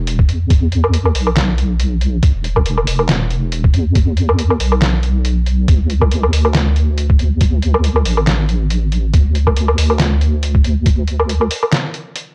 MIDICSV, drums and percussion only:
0, 0, Header, 1, 2, 480
1, 0, Start_track
1, 0, Tempo, 431655
1, 559, Time_signature, 4, 2, 24, 8
1, 13732, End_track
2, 0, Start_track
2, 0, Title_t, "Drums"
2, 80, Note_on_c, 9, 42, 84
2, 191, Note_off_c, 9, 42, 0
2, 211, Note_on_c, 9, 36, 110
2, 319, Note_on_c, 9, 42, 53
2, 322, Note_off_c, 9, 36, 0
2, 430, Note_off_c, 9, 42, 0
2, 559, Note_on_c, 9, 36, 127
2, 559, Note_on_c, 9, 42, 78
2, 670, Note_off_c, 9, 36, 0
2, 670, Note_off_c, 9, 42, 0
2, 800, Note_on_c, 9, 42, 55
2, 911, Note_off_c, 9, 42, 0
2, 932, Note_on_c, 9, 77, 80
2, 1040, Note_on_c, 9, 42, 84
2, 1043, Note_off_c, 9, 77, 0
2, 1152, Note_off_c, 9, 42, 0
2, 1173, Note_on_c, 9, 77, 74
2, 1279, Note_on_c, 9, 46, 84
2, 1284, Note_off_c, 9, 77, 0
2, 1390, Note_off_c, 9, 46, 0
2, 1411, Note_on_c, 9, 77, 76
2, 1519, Note_on_c, 9, 38, 117
2, 1519, Note_on_c, 9, 39, 94
2, 1519, Note_on_c, 9, 42, 76
2, 1522, Note_off_c, 9, 77, 0
2, 1630, Note_off_c, 9, 38, 0
2, 1630, Note_off_c, 9, 39, 0
2, 1630, Note_off_c, 9, 42, 0
2, 1759, Note_on_c, 9, 42, 52
2, 1870, Note_off_c, 9, 42, 0
2, 1998, Note_on_c, 9, 42, 80
2, 2109, Note_off_c, 9, 42, 0
2, 2238, Note_on_c, 9, 42, 55
2, 2349, Note_off_c, 9, 42, 0
2, 2477, Note_on_c, 9, 42, 77
2, 2479, Note_on_c, 9, 36, 126
2, 2589, Note_off_c, 9, 42, 0
2, 2590, Note_off_c, 9, 36, 0
2, 2717, Note_on_c, 9, 42, 53
2, 2828, Note_off_c, 9, 42, 0
2, 2848, Note_on_c, 9, 77, 82
2, 2850, Note_on_c, 9, 36, 67
2, 2955, Note_on_c, 9, 42, 81
2, 2959, Note_off_c, 9, 77, 0
2, 2961, Note_off_c, 9, 36, 0
2, 3066, Note_off_c, 9, 42, 0
2, 3087, Note_on_c, 9, 77, 75
2, 3193, Note_on_c, 9, 46, 87
2, 3198, Note_off_c, 9, 77, 0
2, 3305, Note_off_c, 9, 46, 0
2, 3326, Note_on_c, 9, 77, 77
2, 3435, Note_on_c, 9, 38, 125
2, 3435, Note_on_c, 9, 39, 91
2, 3435, Note_on_c, 9, 42, 75
2, 3437, Note_off_c, 9, 77, 0
2, 3546, Note_off_c, 9, 38, 0
2, 3546, Note_off_c, 9, 39, 0
2, 3546, Note_off_c, 9, 42, 0
2, 3675, Note_on_c, 9, 42, 49
2, 3787, Note_off_c, 9, 42, 0
2, 3915, Note_on_c, 9, 42, 78
2, 4026, Note_off_c, 9, 42, 0
2, 4051, Note_on_c, 9, 36, 114
2, 4156, Note_on_c, 9, 42, 51
2, 4162, Note_off_c, 9, 36, 0
2, 4267, Note_off_c, 9, 42, 0
2, 4396, Note_on_c, 9, 42, 76
2, 4398, Note_on_c, 9, 36, 122
2, 4508, Note_off_c, 9, 42, 0
2, 4509, Note_off_c, 9, 36, 0
2, 4635, Note_on_c, 9, 42, 53
2, 4747, Note_off_c, 9, 42, 0
2, 4769, Note_on_c, 9, 77, 82
2, 4877, Note_on_c, 9, 42, 80
2, 4880, Note_off_c, 9, 77, 0
2, 4988, Note_off_c, 9, 42, 0
2, 5008, Note_on_c, 9, 77, 82
2, 5115, Note_on_c, 9, 46, 87
2, 5119, Note_off_c, 9, 77, 0
2, 5226, Note_off_c, 9, 46, 0
2, 5247, Note_on_c, 9, 77, 84
2, 5355, Note_on_c, 9, 38, 127
2, 5355, Note_on_c, 9, 39, 87
2, 5355, Note_on_c, 9, 42, 77
2, 5358, Note_off_c, 9, 77, 0
2, 5466, Note_off_c, 9, 38, 0
2, 5466, Note_off_c, 9, 39, 0
2, 5466, Note_off_c, 9, 42, 0
2, 5593, Note_on_c, 9, 42, 49
2, 5704, Note_off_c, 9, 42, 0
2, 5834, Note_on_c, 9, 42, 77
2, 5946, Note_off_c, 9, 42, 0
2, 6075, Note_on_c, 9, 42, 49
2, 6186, Note_off_c, 9, 42, 0
2, 6318, Note_on_c, 9, 42, 79
2, 6319, Note_on_c, 9, 36, 124
2, 6429, Note_off_c, 9, 42, 0
2, 6430, Note_off_c, 9, 36, 0
2, 6558, Note_on_c, 9, 42, 52
2, 6669, Note_off_c, 9, 42, 0
2, 6688, Note_on_c, 9, 77, 86
2, 6691, Note_on_c, 9, 36, 67
2, 6799, Note_off_c, 9, 77, 0
2, 6799, Note_on_c, 9, 42, 77
2, 6802, Note_off_c, 9, 36, 0
2, 6910, Note_off_c, 9, 42, 0
2, 6932, Note_on_c, 9, 77, 83
2, 7038, Note_on_c, 9, 46, 94
2, 7043, Note_off_c, 9, 77, 0
2, 7149, Note_off_c, 9, 46, 0
2, 7170, Note_on_c, 9, 77, 88
2, 7277, Note_on_c, 9, 38, 118
2, 7277, Note_on_c, 9, 39, 84
2, 7277, Note_on_c, 9, 42, 74
2, 7281, Note_off_c, 9, 77, 0
2, 7389, Note_off_c, 9, 38, 0
2, 7389, Note_off_c, 9, 39, 0
2, 7389, Note_off_c, 9, 42, 0
2, 7517, Note_on_c, 9, 42, 50
2, 7628, Note_off_c, 9, 42, 0
2, 7757, Note_on_c, 9, 42, 76
2, 7868, Note_off_c, 9, 42, 0
2, 7892, Note_on_c, 9, 36, 107
2, 7996, Note_on_c, 9, 42, 48
2, 8003, Note_off_c, 9, 36, 0
2, 8108, Note_off_c, 9, 42, 0
2, 8236, Note_on_c, 9, 42, 81
2, 8240, Note_on_c, 9, 36, 110
2, 8347, Note_off_c, 9, 42, 0
2, 8351, Note_off_c, 9, 36, 0
2, 8478, Note_on_c, 9, 42, 55
2, 8589, Note_off_c, 9, 42, 0
2, 8610, Note_on_c, 9, 77, 86
2, 8717, Note_on_c, 9, 42, 80
2, 8721, Note_off_c, 9, 77, 0
2, 8829, Note_off_c, 9, 42, 0
2, 8850, Note_on_c, 9, 77, 85
2, 8957, Note_on_c, 9, 46, 96
2, 8961, Note_off_c, 9, 77, 0
2, 9068, Note_off_c, 9, 46, 0
2, 9089, Note_on_c, 9, 77, 83
2, 9197, Note_on_c, 9, 38, 115
2, 9197, Note_on_c, 9, 39, 81
2, 9197, Note_on_c, 9, 42, 77
2, 9200, Note_off_c, 9, 77, 0
2, 9309, Note_off_c, 9, 38, 0
2, 9309, Note_off_c, 9, 39, 0
2, 9309, Note_off_c, 9, 42, 0
2, 9439, Note_on_c, 9, 42, 51
2, 9550, Note_off_c, 9, 42, 0
2, 9679, Note_on_c, 9, 42, 78
2, 9790, Note_off_c, 9, 42, 0
2, 9919, Note_on_c, 9, 42, 51
2, 10030, Note_off_c, 9, 42, 0
2, 10159, Note_on_c, 9, 36, 113
2, 10159, Note_on_c, 9, 42, 82
2, 10270, Note_off_c, 9, 42, 0
2, 10271, Note_off_c, 9, 36, 0
2, 10398, Note_on_c, 9, 42, 56
2, 10510, Note_off_c, 9, 42, 0
2, 10530, Note_on_c, 9, 77, 86
2, 10531, Note_on_c, 9, 36, 61
2, 10638, Note_on_c, 9, 42, 81
2, 10641, Note_off_c, 9, 77, 0
2, 10642, Note_off_c, 9, 36, 0
2, 10749, Note_off_c, 9, 42, 0
2, 10769, Note_on_c, 9, 77, 86
2, 10878, Note_on_c, 9, 46, 103
2, 10880, Note_off_c, 9, 77, 0
2, 10989, Note_off_c, 9, 46, 0
2, 11010, Note_on_c, 9, 77, 81
2, 11117, Note_on_c, 9, 38, 109
2, 11117, Note_on_c, 9, 39, 84
2, 11117, Note_on_c, 9, 42, 82
2, 11122, Note_off_c, 9, 77, 0
2, 11228, Note_off_c, 9, 38, 0
2, 11228, Note_off_c, 9, 39, 0
2, 11228, Note_off_c, 9, 42, 0
2, 11359, Note_on_c, 9, 42, 53
2, 11470, Note_off_c, 9, 42, 0
2, 11598, Note_on_c, 9, 42, 82
2, 11710, Note_off_c, 9, 42, 0
2, 11731, Note_on_c, 9, 36, 99
2, 11838, Note_on_c, 9, 42, 56
2, 11842, Note_off_c, 9, 36, 0
2, 11949, Note_off_c, 9, 42, 0
2, 12077, Note_on_c, 9, 42, 86
2, 12079, Note_on_c, 9, 36, 117
2, 12188, Note_off_c, 9, 42, 0
2, 12190, Note_off_c, 9, 36, 0
2, 12316, Note_on_c, 9, 42, 54
2, 12427, Note_off_c, 9, 42, 0
2, 12450, Note_on_c, 9, 77, 80
2, 12558, Note_on_c, 9, 42, 88
2, 12561, Note_off_c, 9, 77, 0
2, 12669, Note_off_c, 9, 42, 0
2, 12688, Note_on_c, 9, 77, 75
2, 12796, Note_on_c, 9, 46, 97
2, 12799, Note_off_c, 9, 77, 0
2, 12907, Note_off_c, 9, 46, 0
2, 12930, Note_on_c, 9, 77, 80
2, 13037, Note_on_c, 9, 38, 116
2, 13037, Note_on_c, 9, 39, 86
2, 13037, Note_on_c, 9, 42, 82
2, 13041, Note_off_c, 9, 77, 0
2, 13148, Note_off_c, 9, 38, 0
2, 13148, Note_off_c, 9, 39, 0
2, 13148, Note_off_c, 9, 42, 0
2, 13277, Note_on_c, 9, 42, 54
2, 13388, Note_off_c, 9, 42, 0
2, 13518, Note_on_c, 9, 42, 80
2, 13629, Note_off_c, 9, 42, 0
2, 13732, End_track
0, 0, End_of_file